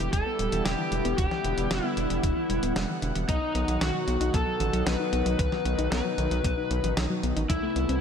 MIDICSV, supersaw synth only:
0, 0, Header, 1, 2, 480
1, 0, Start_track
1, 0, Key_signature, 1, "minor"
1, 0, Tempo, 526316
1, 1077, Time_signature, 4, 2, 24, 8
1, 7304, End_track
2, 0, Start_track
2, 0, Title_t, "Supersaw synth"
2, 0, Program_c, 0, 81
2, 0, Note_on_c, 0, 50, 82
2, 0, Note_on_c, 0, 55, 77
2, 0, Note_on_c, 0, 59, 77
2, 0, Note_on_c, 0, 64, 74
2, 0, Note_on_c, 0, 67, 89
2, 1058, Note_off_c, 0, 67, 0
2, 1077, Note_on_c, 0, 78, 95
2, 2961, Note_off_c, 0, 50, 0
2, 2961, Note_off_c, 0, 55, 0
2, 2961, Note_off_c, 0, 59, 0
2, 2961, Note_off_c, 0, 64, 0
2, 2996, Note_on_c, 0, 47, 84
2, 2996, Note_on_c, 0, 51, 73
2, 2996, Note_on_c, 0, 54, 77
2, 2996, Note_on_c, 0, 63, 79
2, 6800, Note_off_c, 0, 47, 0
2, 6800, Note_off_c, 0, 51, 0
2, 6800, Note_off_c, 0, 54, 0
2, 6800, Note_off_c, 0, 63, 0
2, 6801, Note_off_c, 0, 78, 0
2, 6835, Note_on_c, 0, 48, 85
2, 6836, Note_on_c, 0, 52, 75
2, 6836, Note_on_c, 0, 57, 76
2, 6836, Note_on_c, 0, 59, 77
2, 6836, Note_on_c, 0, 64, 95
2, 7304, Note_off_c, 0, 48, 0
2, 7304, Note_off_c, 0, 52, 0
2, 7304, Note_off_c, 0, 57, 0
2, 7304, Note_off_c, 0, 59, 0
2, 7304, Note_off_c, 0, 64, 0
2, 7304, End_track
0, 0, End_of_file